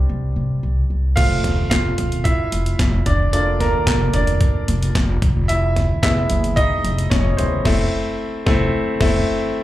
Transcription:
Already playing: G3 C4 D4 D5
0.09 C2
0.36 C3
0.63 C2
0.90 C2
1.16 F1 A3 C4 F4 F5, kick, closed hi-hat, crash
1.44 snare, closed hi-hat, floor tom
1.70 F1 F4 F5, kick, snare, clap, closed hi-hat
1.98 E1, closed hi-hat, floor tom
2.12 closed hi-hat
2.24 E4 E5, kick, closed hi-hat
2.52 F1, closed hi-hat
2.66 closed hi-hat
2.79 F1, kick, snare, clap, closed hi-hat
3.06 F1 D4 D5, kick, closed hi-hat, floor tom
3.33 A#3 D4 F4 A4 D5, closed hi-hat
3.60 A#3 A#4, snare, closed hi-hat, floor tom
3.87 F1, kick, snare, clap, closed hi-hat
4.14 F1 D4 D5, closed hi-hat, floor tom
4.27 closed hi-hat
4.41 kick, closed hi-hat
4.68 F1, closed hi-hat
4.83 closed hi-hat
4.95 F1, kick, snare, clap, closed hi-hat
5.22 F1, kick, closed hi-hat, floor tom
5.48 E4 E5, closed hi-hat
5.76 snare, closed hi-hat, floor tom
6.03 F1 G#3 B3 E4 E5, kick, snare, clap, closed hi-hat
6.30 F#1, closed hi-hat, floor tom
6.44 closed hi-hat
6.56 D#4 D#5, kick, closed hi-hat
6.84 F1, closed hi-hat
6.98 closed hi-hat
7.10 F1 C#4 C#5, kick, snare, clap, closed hi-hat
7.37 F1 G#3 B3 C4 E4 C5, closed hi-hat, floor tom
7.65 F1 A3 C4 E4, kick, snare, crash
8.46 F1 A3 C4 E4, kick, snare
9.00 F1 A3 C4 E4, kick, snare, crash

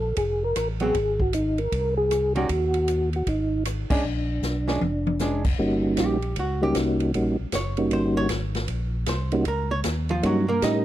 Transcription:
Already playing: A#1 A4
0.17 F1 G#4, kick, ride
0.44 A#4
0.56 A1 A#4, cross-stick, hi-hat pedal, ride
0.80 F#3 B3 C4 G#4, ride
0.94 G#1, kick, ride
1.20 F#4, kick
1.33 D#4, hi-hat pedal, ride
1.58 A#4, ride
1.72 C2, kick, ride
1.97 G#4
2.11 cross-stick, hi-hat pedal, ride
2.35 D#3 G3 C#4 F#4, ride
2.49 D#2, kick, ride
2.74 ride
2.88 hi-hat pedal, ride
3.13 F#4, ride
3.27 G#1 D#4, kick, ride
3.65 cross-stick, hi-hat pedal, ride
3.90 G#1 G#3 C#4 D4, kick, crash
4.04 A#1
4.42 B1, snare, hi-hat pedal
4.68 G#3 C#4 D4, snare
4.81 F1, high tom
5.07 high tom
5.19 G#3 C#4 D4, snare, hi-hat pedal
5.45 kick, crash
5.58 G1 G3 A#3 C#4 D#4 F#4, kick
5.97 A#1 G4, kick, snare, hi-hat pedal, ride
6.22 ride
6.36 C#2 F#4, kick, ride
6.62 G3 A#3 C#4 D#4 F#4 G4
6.75 C2, kick, snare, hi-hat pedal, ride
7.00 ride
7.14 A#1 G3 A#3 C#4 D#4 F#4, kick, ride
7.39 A#1
7.52 F#1 C#5, kick, snare, hi-hat pedal, ride
7.77 G3 A#3 C#4 D#4 F#4, ride
7.91 G1 C5, kick, ride
8.17 C#5
8.29 G#1, kick, snare, hi-hat pedal, ride
8.55 snare, ride
8.68 A#1, kick, ride
9.06 C2 C5, kick, snare, hi-hat pedal, ride
9.32 G3 A#3 C#4 D#4 F#4, ride
9.45 C#2 A#4, kick, ride
9.71 C#5
9.84 D#2, kick, snare, hi-hat pedal, ride
10.09 F3 F4, ride
10.23 G2 F#3 G3 A#3 C#4 D#4 F#4, kick, ride
10.48 A#3 A#4
10.62 A2 G3 C#4 D#4 G4 A#4 D#5, kick, snare, hi-hat pedal, ride

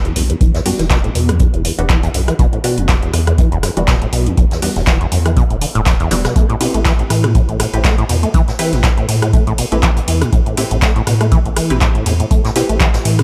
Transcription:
0.05 E2, closed hi-hat
0.16 B1 E2, closed hi-hat, open hi-hat
0.30 E2, closed hi-hat
0.41 E1 E3, kick, closed hi-hat
0.55 E2, snare, closed hi-hat
0.66 F#2 G3 B3 D4 F#4, open hi-hat
0.79 E1 E3, snare, closed hi-hat
0.90 B2, kick, snare, clap, closed hi-hat
1.04 A2, closed hi-hat
1.15 E2 B2, closed hi-hat, open hi-hat
1.28 E2, cross-stick, closed hi-hat
1.39 E2, kick, closed hi-hat
1.54 E1 E2, closed hi-hat
1.65 E2, closed hi-hat, open hi-hat
1.79 E1 E2 G3 B3 D4 F#4, closed hi-hat
1.89 E3, kick, clap, closed hi-hat
2.03 E2, closed hi-hat
2.14 B1 F#2, open hi-hat
2.28 E3, cross-stick, closed hi-hat
2.39 E1 B2, kick, closed hi-hat
2.53 A2, closed hi-hat
2.64 B2 G3 B3 D4 F#4, closed hi-hat, open hi-hat
2.78 E1 E2, closed hi-hat
2.89 E2, kick, snare, clap, closed hi-hat
3.02 E2, closed hi-hat
3.13 E2, cross-stick, closed hi-hat, open hi-hat
3.27 E2, cross-stick, closed hi-hat
3.38 E3, kick, closed hi-hat
3.52 E1 E2, closed hi-hat
3.63 F#2, cross-stick, snare, closed hi-hat, open hi-hat
3.77 E1 E3 G3 B3 D4 F#4, closed hi-hat
3.88 B2, kick, snare, clap, closed hi-hat
4.02 A2, closed hi-hat
4.13 B1 B2, closed hi-hat, open hi-hat
4.26 E2, closed hi-hat
4.37 E1 E2, kick, closed hi-hat
4.51 E2, snare, closed hi-hat
4.62 E2 G3 B3 D4 F#4, open hi-hat
4.76 E1 E2, snare, closed hi-hat
4.87 E3, kick, snare, clap, closed hi-hat
5.01 E2, closed hi-hat
5.12 E2 F#2, closed hi-hat, open hi-hat
5.26 E3, cross-stick, closed hi-hat
5.37 B2, kick, closed hi-hat
5.50 E1 A2, closed hi-hat
5.61 D3, closed hi-hat, open hi-hat
5.75 E1 A2, closed hi-hat
5.86 E2, kick, snare, clap, closed hi-hat
6.00 E2, closed hi-hat
6.11 E1 E3 G3 B3 D4 F#4, snare, closed hi-hat, open hi-hat
6.24 B2, cross-stick, snare, closed hi-hat
6.36 A1 A3, kick, closed hi-hat
6.50 A2, closed hi-hat
6.61 B2 C4 E4 G4 B4, closed hi-hat, open hi-hat, ride
6.74 A1 A3, closed hi-hat
6.85 E3, kick, snare, clap, closed hi-hat
6.99 A2, closed hi-hat
7.10 A2 E3, cross-stick, closed hi-hat, open hi-hat, ride
7.24 A2, cross-stick, closed hi-hat
7.35 A2, kick, closed hi-hat
7.49 A1 A2, closed hi-hat
7.59 A2, cross-stick, snare, closed hi-hat, open hi-hat, ride
7.74 A1 A2 C4 E4 G4 B4, closed hi-hat
7.84 A3, kick, snare, clap, closed hi-hat
7.98 A2, closed hi-hat
8.09 E2 B2, closed hi-hat, open hi-hat, ride
8.23 A3, closed hi-hat
8.34 A1 E3, kick, closed hi-hat
8.48 A2, snare, closed hi-hat
8.59 E3 C4 E4 G4 B4, open hi-hat, ride
8.73 A1 A2, snare, closed hi-hat
8.83 A2, kick, snare, clap, closed hi-hat
8.98 A2, closed hi-hat
9.09 A2, closed hi-hat, open hi-hat, ride
9.22 A2, cross-stick, closed hi-hat
9.33 A3, kick, closed hi-hat
9.47 A1 A2, closed hi-hat
9.58 B2, closed hi-hat, open hi-hat, ride
9.72 A1 A3 C4 E4 G4 B4, closed hi-hat
9.83 E3, kick, clap, closed hi-hat
9.97 A2, closed hi-hat
10.08 E2 E3, open hi-hat, ride
10.22 A2, cross-stick, closed hi-hat
10.33 A1 A2, kick, closed hi-hat
10.46 A2, closed hi-hat
10.57 A2 C4 E4 G4 B4, closed hi-hat, open hi-hat, ride
10.71 A1 A2, closed hi-hat
10.81 A3, kick, snare, clap, closed hi-hat
10.96 A2, closed hi-hat
11.07 A2 B2, cross-stick, closed hi-hat, open hi-hat, ride
11.21 A3, cross-stick, closed hi-hat
11.32 E3, kick, closed hi-hat
11.45 A1 A2, closed hi-hat
11.56 E3, cross-stick, closed hi-hat, open hi-hat, ride
11.70 A1 A2 C4 E4 G4 B4, closed hi-hat
11.81 A2, kick, snare, clap, closed hi-hat
11.95 A2, closed hi-hat
12.06 E2 A2, closed hi-hat, open hi-hat, ride
12.20 A2, closed hi-hat
12.31 A1 A3, kick, closed hi-hat
12.45 A2, snare, closed hi-hat
12.56 B2 C4 E4 G4 B4, snare, closed hi-hat, open hi-hat, ride
12.69 A1 A3, closed hi-hat
12.80 E3, kick, clap, closed hi-hat
12.94 A2, snare, closed hi-hat
13.05 A2 E3, open hi-hat, ride
13.19 A2, cross-stick, closed hi-hat

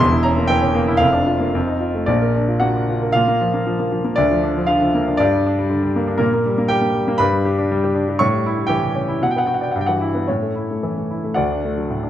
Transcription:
Already playing: E1 C6
0.00 E2
0.12 E4
0.23 C#4 A#5
0.37 A#3
0.47 E3 G5
0.62 C#4
0.75 A#3
0.87 E4
0.97 F1 F2 F5
1.13 D4
1.26 F4
1.40 A#3
1.55 F2
1.67 D#4
1.80 F4
1.95 A3
2.06 A#1 A#2 D5
2.21 A#4
2.35 D4
2.48 F4
2.60 A#3 F#4 F#5
2.76 D4
2.89 F4
3.02 A#4
3.12 A#2 F4 F5
3.28 A#3
3.41 F3
3.54 A#3
3.67 F3
3.79 A#3
3.92 F3
4.04 A#3
4.16 D2 D4 D5
4.31 F3
4.44 D4
4.57 F3
4.67 D3 F4 F5
4.82 F3
4.95 A#3
5.08 D4
5.17 G2 D4 D5
5.35 G3
5.46 D4
5.59 G3
5.70 D3
5.83 G3
5.96 A#3
6.08 D4
6.18 A#2 A#3 A#4
6.34 A#3
6.46 G3
6.58 A#3
6.68 G3 G4 G5
6.81 A#3
6.94 G3
7.08 A#3
7.18 G2 B4 B5
7.32 G3
7.45 G4
7.58 D4
7.71 G3
7.84 G4
7.95 D4
8.09 G4
8.19 A2 C#5 C#6
8.32 G3
8.46 E4
8.58 G3
8.67 E3 G4 G5
8.83 G3
8.95 C#4
9.08 E4
9.22 B2 F#5
9.31 G5
9.36 B3 F#5
9.46 F#4 G5
9.54 F#5
9.61 D5 G5
9.71 F#5
9.76 G2
9.81 G5
9.86 E3 F#4 F#5
10.01 E4
10.14 B3
10.28 A2 C#4 C#5
10.42 A3
10.56 E4
10.71 A3
10.83 E3
10.97 A3
11.11 E4
11.24 A3
11.34 D2 F#4 D5 F#5
11.52 D4
11.65 A3
11.78 F#3
11.90 A2
12.03 D4

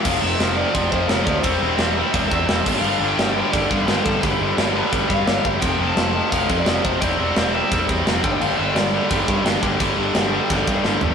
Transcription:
0.03 F1 F2 C3 F3 F5, kick, crash
0.20 F1 F2 C3 F3 E5
0.39 F1 F2 C3 F3, snare, crash
0.55 F2 C3 F3 D5
0.74 F1 F2 C3 F3, kick, crash
0.90 F2 C3 F3 C5, kick
1.09 F1 F2 C3 F3, snare, crash
1.24 D2 F2 C3 F3 D5, kick
1.39 C5
1.43 E1 C3 G3 C4, kick, crash
1.61 E1 C3 G3 C4
1.75 E1 C3 G3 E5, snare, crash
1.79 C4
1.95 C3 G3 C4
2.12 E1 C3 G3 C4, kick, crash
2.28 C3 G3 E5, kick
2.32 E2 C4
2.48 E1 C3 G3 C4, snare, crash
2.65 G1 G2 D3 G3, kick, crash
2.80 G1 G2 D3 F5
2.84 G3, crash
3.00 G1 G2 D3 G3
3.08 G5
3.17 G1 G2 D3 G3, snare, crash
3.33 G2 D3 G3 G5
3.51 G1 G2 D3 G3 D5, kick, crash
3.69 G2 D3 G3, kick
3.79 B4
3.86 G1 G2 D3 G3, snare, crash
4.03 G1 G2 D3 G3 A4, kick
4.20 G2 D3 B4, kick, crash
4.24 G1 G3
4.40 G1 G2 D3 G3
4.56 G1 G2 D3 G3, snare, crash
4.73 G2 D3 G3 B4
4.92 G1 G2 D3 G3, kick, crash
5.08 G2 D3 G3 F5, kick
5.27 G1 G2 D3 G3, snare, crash
5.43 G1 G2 D3 G3, kick
5.48 E5
5.60 F1 F2 C3 F3 G5, kick, crash
5.79 F1 F2 C3 F3
5.86 A5
5.96 F1 F2 C3 F3, snare, crash
6.12 F2 C3 A5
6.17 F3
6.31 F1 F2 C3 F3 F5, kick, crash
6.50 F2 C3 F3, kick
6.58 D5
6.66 F1 F2 C3 F3, snare, crash
6.83 F1 F2 C3 F3 C5, kick
7.00 E1 C3 G3 C4 D5, kick, crash
7.18 E1 C3 G3 C4
7.36 E1 C3 G3 C4, snare, crash
7.53 C3 G3 C4 E5
7.70 E1 C3 G3 C4, kick, crash
7.88 E2 C3 G3 C4, kick
8.05 F1 C3 G3 C4, snare, crash
8.23 G1 G2 D3 G3 G5, kick
8.32 G5
8.40 G1 G2 D3 G3 F5, crash
8.57 G1 G2 D3 G3 E5
8.74 G1 G2 D3 G3 D5, snare, crash
8.94 G2 D3 G3
9.08 G1 G2 D3 G3 G4, kick, crash
9.28 G2 D3 G3, kick
9.44 G1 G2 D3 G3, snare, crash
9.62 G1 G2 D3 G3, kick
9.80 G1 G2 D3 G3, kick, crash
9.97 G1 G2 D3 G3
10.14 G1 G2 D3 G3, snare, crash
10.32 G2 D3 G3
10.50 G1 G2 D3 G3, kick, crash
10.67 G2 D3 G3, kick
10.84 G1 G2 D3 G3, snare
11.01 G1 G2 D3 G3, floor tom

